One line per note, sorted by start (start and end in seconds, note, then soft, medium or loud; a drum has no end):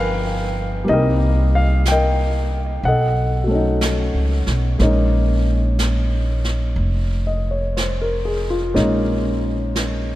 0.00 0.83 G1 medium
0.00 0.86 F3 soft
0.00 0.83 G3 soft
0.00 0.87 B3 soft
0.00 0.88 D#4 medium
0.00 0.85 A#4 medium
0.00 0.90 B4 medium
0.00 0.91 F5 medium
0.00 0.89 G5 medium
0.00 0.90 G#5 medium
0.84 2.80 C2 medium
0.84 2.83 G3 soft
0.84 2.83 A#3 soft
0.84 2.84 C4 soft
0.84 brush sweep soft
0.89 2.85 D#4 medium
0.89 2.83 G4 medium
0.89 1.90 A#4 medium
0.89 1.50 D#5 medium
1.55 1.88 F5 medium
1.85 2.88 G5 medium
1.85 brush sweep soft
1.85 snare soft
1.85 hi-hat pedal soft
1.91 2.83 A#4 medium
1.91 2.83 D#5 medium
2.83 4.11 B1 medium
2.83 4.44 F#5 medium
2.83 brush sweep soft
2.88 4.78 A4 medium
2.88 4.79 D#5 medium
3.44 4.78 F#3 soft
3.44 4.80 A3 soft
3.51 4.80 C#4 soft
3.55 4.81 D#4 soft
3.81 brush sweep soft
3.81 snare soft
3.81 hi-hat pedal medium
4.14 4.45 C#2 medium
4.47 4.78 B1 medium
4.47 snare soft
4.79 6.73 A#1 medium
4.79 8.72 G#3 soft
4.79 8.73 A#3 soft
4.79 8.73 C#4 soft
4.79 brush sweep soft
4.79 snare soft
4.83 8.74 D#4 medium
5.79 brush sweep soft
5.79 snare soft
5.79 hi-hat pedal medium
6.44 snare soft
6.76 8.72 F1 medium
6.76 brush sweep soft
7.27 7.58 D#5 soft
7.51 7.86 C#5 soft
7.77 8.23 C5 soft
7.77 brush sweep soft
7.77 snare soft
7.77 hi-hat pedal soft
8.01 8.44 A#4 soft
8.25 8.57 G#4 soft
8.50 8.86 F4 soft
8.74 10.15 A#1 medium
8.74 10.15 G#3 medium
8.74 10.15 A#3 soft
8.74 10.15 C#4 soft
8.74 10.15 D#4 medium
8.74 brush sweep soft
8.74 snare soft
9.75 brush sweep soft
9.75 snare soft
9.75 hi-hat pedal medium